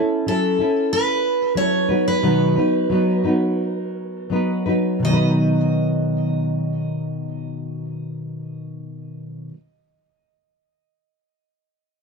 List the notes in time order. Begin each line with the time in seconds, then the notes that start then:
Already playing: C#4 E4 A4
0.26 F#3 C#4 E4 A4
0.59 C#4 E4 A4
0.93 B4
1.55 F#3 C#4 E4 A4 C#5
1.89 F#3 B3 D#4 B4
2.08 B4
2.23 B2 D#3 F#3 B3 D#4 B4
2.56 F#3 B3 D#4 B4
2.90 F#3 B3 D#4 B4
3.24 F#3 B3 D#4 B4
4.30 F#3 B3 D#4 B4
4.66 F#3 B3 D#4 B4
4.99 B2 D#3
5.05 F#3 B3 D#5
5.10 D#4 B4